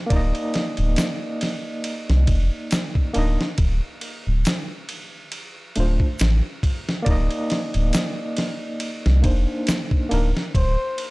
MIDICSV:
0, 0, Header, 1, 5, 480
1, 0, Start_track
1, 0, Tempo, 869565
1, 61, Time_signature, 4, 2, 24, 8
1, 6129, End_track
2, 0, Start_track
2, 0, Title_t, "Muted trumpet"
2, 0, Program_c, 0, 59
2, 5830, Note_on_c, 0, 72, 100
2, 6129, Note_off_c, 0, 72, 0
2, 6129, End_track
3, 0, Start_track
3, 0, Title_t, "Tine electric piano"
3, 0, Program_c, 1, 4
3, 35, Note_on_c, 1, 58, 89
3, 54, Note_on_c, 1, 74, 78
3, 70, Note_on_c, 1, 63, 83
3, 87, Note_on_c, 1, 75, 95
3, 1702, Note_off_c, 1, 58, 0
3, 1711, Note_off_c, 1, 74, 0
3, 1719, Note_off_c, 1, 63, 0
3, 1728, Note_off_c, 1, 75, 0
3, 1731, Note_on_c, 1, 58, 98
3, 1739, Note_on_c, 1, 62, 84
3, 1748, Note_on_c, 1, 63, 86
3, 1757, Note_on_c, 1, 75, 97
3, 1891, Note_off_c, 1, 58, 0
3, 1895, Note_off_c, 1, 62, 0
3, 1899, Note_off_c, 1, 63, 0
3, 1904, Note_off_c, 1, 75, 0
3, 3178, Note_on_c, 1, 57, 72
3, 3183, Note_on_c, 1, 62, 63
3, 3195, Note_on_c, 1, 65, 65
3, 3201, Note_on_c, 1, 72, 78
3, 3335, Note_off_c, 1, 57, 0
3, 3337, Note_off_c, 1, 62, 0
3, 3343, Note_off_c, 1, 65, 0
3, 3346, Note_off_c, 1, 72, 0
3, 3877, Note_on_c, 1, 58, 88
3, 3890, Note_on_c, 1, 74, 84
3, 3910, Note_on_c, 1, 63, 77
3, 3924, Note_on_c, 1, 75, 97
3, 5068, Note_off_c, 1, 58, 0
3, 5074, Note_off_c, 1, 74, 0
3, 5084, Note_off_c, 1, 63, 0
3, 5089, Note_on_c, 1, 58, 66
3, 5091, Note_off_c, 1, 75, 0
3, 5095, Note_on_c, 1, 62, 58
3, 5104, Note_on_c, 1, 63, 60
3, 5108, Note_on_c, 1, 72, 71
3, 5549, Note_off_c, 1, 58, 0
3, 5552, Note_off_c, 1, 62, 0
3, 5556, Note_off_c, 1, 63, 0
3, 5559, Note_off_c, 1, 72, 0
3, 5572, Note_on_c, 1, 58, 81
3, 5579, Note_on_c, 1, 62, 71
3, 5585, Note_on_c, 1, 63, 72
3, 5596, Note_on_c, 1, 70, 92
3, 5676, Note_off_c, 1, 58, 0
3, 5680, Note_off_c, 1, 62, 0
3, 5683, Note_off_c, 1, 63, 0
3, 5688, Note_off_c, 1, 70, 0
3, 6129, End_track
4, 0, Start_track
4, 0, Title_t, "Analog synth bass"
4, 0, Program_c, 2, 38
4, 60, Note_on_c, 2, 26, 97
4, 176, Note_off_c, 2, 26, 0
4, 432, Note_on_c, 2, 26, 103
4, 527, Note_off_c, 2, 26, 0
4, 1156, Note_on_c, 2, 36, 87
4, 1249, Note_off_c, 2, 36, 0
4, 1260, Note_on_c, 2, 29, 102
4, 1377, Note_off_c, 2, 29, 0
4, 1745, Note_on_c, 2, 26, 102
4, 1859, Note_off_c, 2, 26, 0
4, 1980, Note_on_c, 2, 26, 97
4, 2097, Note_off_c, 2, 26, 0
4, 2357, Note_on_c, 2, 26, 96
4, 2450, Note_off_c, 2, 26, 0
4, 3186, Note_on_c, 2, 26, 106
4, 3300, Note_off_c, 2, 26, 0
4, 3425, Note_on_c, 2, 33, 85
4, 3539, Note_off_c, 2, 33, 0
4, 3904, Note_on_c, 2, 26, 100
4, 4018, Note_off_c, 2, 26, 0
4, 4277, Note_on_c, 2, 26, 101
4, 4370, Note_off_c, 2, 26, 0
4, 5001, Note_on_c, 2, 36, 91
4, 5092, Note_off_c, 2, 36, 0
4, 5104, Note_on_c, 2, 29, 97
4, 5219, Note_off_c, 2, 29, 0
4, 5586, Note_on_c, 2, 26, 106
4, 5700, Note_off_c, 2, 26, 0
4, 5824, Note_on_c, 2, 26, 101
4, 5939, Note_off_c, 2, 26, 0
4, 6129, End_track
5, 0, Start_track
5, 0, Title_t, "Drums"
5, 57, Note_on_c, 9, 51, 87
5, 58, Note_on_c, 9, 36, 112
5, 112, Note_off_c, 9, 51, 0
5, 113, Note_off_c, 9, 36, 0
5, 192, Note_on_c, 9, 51, 40
5, 247, Note_off_c, 9, 51, 0
5, 297, Note_on_c, 9, 51, 64
5, 306, Note_on_c, 9, 38, 54
5, 352, Note_off_c, 9, 51, 0
5, 361, Note_off_c, 9, 38, 0
5, 426, Note_on_c, 9, 51, 41
5, 481, Note_off_c, 9, 51, 0
5, 532, Note_on_c, 9, 51, 82
5, 541, Note_on_c, 9, 38, 109
5, 542, Note_on_c, 9, 82, 78
5, 587, Note_off_c, 9, 51, 0
5, 597, Note_off_c, 9, 38, 0
5, 597, Note_off_c, 9, 82, 0
5, 779, Note_on_c, 9, 51, 63
5, 788, Note_on_c, 9, 38, 48
5, 834, Note_off_c, 9, 51, 0
5, 843, Note_off_c, 9, 38, 0
5, 1015, Note_on_c, 9, 51, 87
5, 1070, Note_off_c, 9, 51, 0
5, 1157, Note_on_c, 9, 38, 49
5, 1212, Note_off_c, 9, 38, 0
5, 1255, Note_on_c, 9, 51, 62
5, 1257, Note_on_c, 9, 36, 89
5, 1310, Note_off_c, 9, 51, 0
5, 1312, Note_off_c, 9, 36, 0
5, 1495, Note_on_c, 9, 51, 85
5, 1500, Note_on_c, 9, 82, 79
5, 1504, Note_on_c, 9, 38, 109
5, 1550, Note_off_c, 9, 51, 0
5, 1555, Note_off_c, 9, 82, 0
5, 1559, Note_off_c, 9, 38, 0
5, 1630, Note_on_c, 9, 36, 90
5, 1685, Note_off_c, 9, 36, 0
5, 1735, Note_on_c, 9, 51, 62
5, 1791, Note_off_c, 9, 51, 0
5, 1880, Note_on_c, 9, 38, 46
5, 1936, Note_off_c, 9, 38, 0
5, 1975, Note_on_c, 9, 51, 84
5, 1978, Note_on_c, 9, 36, 113
5, 2030, Note_off_c, 9, 51, 0
5, 2033, Note_off_c, 9, 36, 0
5, 2215, Note_on_c, 9, 51, 64
5, 2270, Note_off_c, 9, 51, 0
5, 2457, Note_on_c, 9, 51, 84
5, 2458, Note_on_c, 9, 82, 70
5, 2466, Note_on_c, 9, 38, 116
5, 2512, Note_off_c, 9, 51, 0
5, 2513, Note_off_c, 9, 82, 0
5, 2522, Note_off_c, 9, 38, 0
5, 2698, Note_on_c, 9, 51, 62
5, 2753, Note_off_c, 9, 51, 0
5, 2935, Note_on_c, 9, 51, 82
5, 2990, Note_off_c, 9, 51, 0
5, 3177, Note_on_c, 9, 51, 64
5, 3232, Note_off_c, 9, 51, 0
5, 3311, Note_on_c, 9, 36, 79
5, 3366, Note_off_c, 9, 36, 0
5, 3418, Note_on_c, 9, 82, 76
5, 3419, Note_on_c, 9, 51, 84
5, 3429, Note_on_c, 9, 38, 112
5, 3473, Note_off_c, 9, 82, 0
5, 3475, Note_off_c, 9, 51, 0
5, 3484, Note_off_c, 9, 38, 0
5, 3660, Note_on_c, 9, 36, 84
5, 3662, Note_on_c, 9, 51, 64
5, 3715, Note_off_c, 9, 36, 0
5, 3718, Note_off_c, 9, 51, 0
5, 3801, Note_on_c, 9, 38, 52
5, 3856, Note_off_c, 9, 38, 0
5, 3898, Note_on_c, 9, 51, 83
5, 3900, Note_on_c, 9, 36, 115
5, 3954, Note_off_c, 9, 51, 0
5, 3955, Note_off_c, 9, 36, 0
5, 4033, Note_on_c, 9, 51, 42
5, 4088, Note_off_c, 9, 51, 0
5, 4140, Note_on_c, 9, 51, 59
5, 4149, Note_on_c, 9, 38, 51
5, 4195, Note_off_c, 9, 51, 0
5, 4204, Note_off_c, 9, 38, 0
5, 4273, Note_on_c, 9, 51, 43
5, 4328, Note_off_c, 9, 51, 0
5, 4377, Note_on_c, 9, 51, 88
5, 4383, Note_on_c, 9, 82, 78
5, 4386, Note_on_c, 9, 38, 112
5, 4432, Note_off_c, 9, 51, 0
5, 4438, Note_off_c, 9, 82, 0
5, 4441, Note_off_c, 9, 38, 0
5, 4618, Note_on_c, 9, 51, 66
5, 4627, Note_on_c, 9, 38, 54
5, 4673, Note_off_c, 9, 51, 0
5, 4682, Note_off_c, 9, 38, 0
5, 4857, Note_on_c, 9, 51, 90
5, 4912, Note_off_c, 9, 51, 0
5, 5000, Note_on_c, 9, 38, 49
5, 5055, Note_off_c, 9, 38, 0
5, 5099, Note_on_c, 9, 51, 60
5, 5100, Note_on_c, 9, 36, 88
5, 5154, Note_off_c, 9, 51, 0
5, 5155, Note_off_c, 9, 36, 0
5, 5337, Note_on_c, 9, 51, 82
5, 5346, Note_on_c, 9, 38, 108
5, 5347, Note_on_c, 9, 82, 77
5, 5392, Note_off_c, 9, 51, 0
5, 5401, Note_off_c, 9, 38, 0
5, 5402, Note_off_c, 9, 82, 0
5, 5472, Note_on_c, 9, 36, 91
5, 5527, Note_off_c, 9, 36, 0
5, 5582, Note_on_c, 9, 51, 62
5, 5638, Note_off_c, 9, 51, 0
5, 5722, Note_on_c, 9, 38, 44
5, 5777, Note_off_c, 9, 38, 0
5, 5821, Note_on_c, 9, 36, 107
5, 5823, Note_on_c, 9, 51, 83
5, 5876, Note_off_c, 9, 36, 0
5, 5878, Note_off_c, 9, 51, 0
5, 6061, Note_on_c, 9, 51, 64
5, 6116, Note_off_c, 9, 51, 0
5, 6129, End_track
0, 0, End_of_file